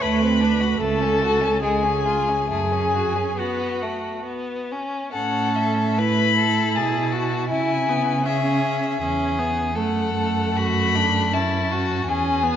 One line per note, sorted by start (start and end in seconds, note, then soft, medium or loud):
0.01 0.68 D2 medium
0.01 0.23 A3 medium
0.01 0.79 B4 medium
0.01 0.82 B5 medium
0.22 0.42 C4 medium
0.41 0.62 D4 medium
0.60 0.80 F#4 medium
0.80 1.49 C#2 medium
0.80 1.02 A3 medium
0.80 1.62 A4 medium
0.80 1.62 A5 medium
1.01 1.23 C#4 medium
1.22 1.43 F#4 medium
1.41 1.63 C#4 medium
1.63 2.36 C#2 medium
1.63 1.85 G#3 medium
1.63 2.49 G#4 medium
1.63 2.49 G#5 medium
1.83 2.07 C#4 medium
2.05 2.30 F4 medium
2.29 2.49 C#4 medium
2.50 3.24 F#2 medium
2.50 2.73 A3 medium
2.50 3.41 G#4 medium
2.50 3.40 G#5 medium
2.72 2.96 C#4 soft
2.95 3.17 F#4 medium
3.16 3.36 C#4 medium
3.36 3.83 B3 medium
3.36 4.28 F#4 medium
3.36 4.27 F#5 medium
3.82 4.25 A3 medium
4.25 4.73 B3 medium
4.72 5.12 C#4 medium
5.13 6.79 A2 medium
5.13 6.01 C#4 medium
5.13 5.99 A4 medium
5.13 5.57 F#5 medium
5.56 6.00 E5 medium
5.98 7.50 E4 medium
5.98 6.37 B4 medium
5.98 6.77 B5 loud
6.37 6.77 A4 medium
6.75 7.53 B2 medium
6.75 7.14 G#4 medium
6.75 7.49 A5 medium
7.13 7.49 F#4 medium
7.50 9.02 C#3 medium
7.50 8.25 E4 medium
7.50 7.91 E4 medium
7.50 8.25 G#5 medium
7.90 8.28 B3 medium
8.25 9.01 C#4 medium
8.25 9.00 G#4 medium
8.25 9.37 E5 medium
9.01 9.79 E2 medium
9.01 9.40 C#4 medium
9.01 9.77 G#4 medium
9.39 9.75 B3 medium
9.75 12.07 F#2 medium
9.75 10.14 A3 medium
9.75 10.58 A4 medium
9.75 10.58 F#5 medium
10.15 11.35 A3 medium
10.57 10.97 F#4 medium
10.57 11.36 B5 loud
10.95 11.34 D4 medium
11.33 12.06 C#4 medium
11.33 11.74 E4 medium
11.33 12.06 A5 medium
11.72 12.10 F#4 medium
12.06 12.56 E2 medium
12.06 12.45 C#4 medium
12.06 12.56 G#4 medium
12.06 12.56 G#5 medium
12.43 12.56 B3 medium